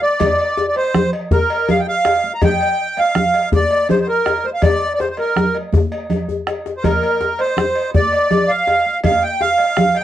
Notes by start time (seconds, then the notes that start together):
0.02 D5, high conga
0.20 bombo low, cowbell, djembe slap, djembe tone, high conga, djembe bass, low conga
0.39 cowbell
0.57 djembe slap
0.68 D5
0.76 C5, bombo rim, cowbell, high conga
0.94 bombo rim, djembe slap, high conga, djembe tone, low conga
1.13 cowbell, djembe slap
1.31 A#4, bombo low, djembe slap, high conga, djembe bass
1.50 cowbell
1.68 F5, cowbell, djembe tone, low conga
1.80 G5
1.87 F5, bombo rim, djembe slap
2.05 bombo rim, cowbell, djembe slap
2.24 high conga
2.34 A#5
2.42 G5, bombo low, cowbell, djembe slap, djembe tone, high conga, djembe bass, low conga
2.60 cowbell
2.97 F5, bombo rim, cowbell, high conga
3.15 bombo rim, djembe slap, high conga, djembe tone, low conga
3.34 cowbell, djembe slap
3.52 D5, bombo low, djembe slap, high conga, djembe bass
3.71 cowbell
3.89 C5, cowbell, djembe tone, low conga
4.01 C5
4.07 A#4, bombo rim, djembe slap
4.25 bombo rim, cowbell, djembe slap
4.44 C5, high conga
4.54 F5
4.62 D5, bombo low, cowbell, high conga, djembe tone, low conga, djembe bass
4.80 cowbell, high conga
4.94 D5
4.99 C5, djembe slap
5.10 C5
5.17 A#4, cowbell, djembe slap, high conga
5.36 bombo rim, djembe slap, djembe tone, low conga
5.55 bombo rim, cowbell
5.73 bombo low, djembe slap, high conga, djembe bass
5.92 cowbell, djembe slap
6.10 cowbell, low conga, djembe bass
6.28 high conga, djembe bass
6.47 bombo rim, cowbell, djembe slap
6.66 bombo rim, djembe slap
6.77 C5
6.84 A#4, bombo low, cowbell, djembe slap, high conga, djembe tone, low conga, djembe bass
7.03 cowbell
7.21 djembe slap
7.39 C5, bombo rim, cowbell, high conga
7.57 bombo rim, djembe slap, high conga, djembe tone, low conga
7.75 cowbell, djembe slap
7.94 D5, bombo low, djembe slap, high conga, djembe bass
8.12 cowbell
8.31 cowbell, djembe tone, low conga
8.49 F5
8.67 cowbell, djembe slap
8.86 high conga
9.04 F5, bombo low, cowbell, djembe slap, djembe tone, high conga, djembe bass, low conga
9.23 G5
9.41 F5, djembe slap
9.58 bombo rim, cowbell, high conga
9.77 bombo rim, djembe slap, djembe tone, high conga, low conga
9.95 G5, cowbell, djembe slap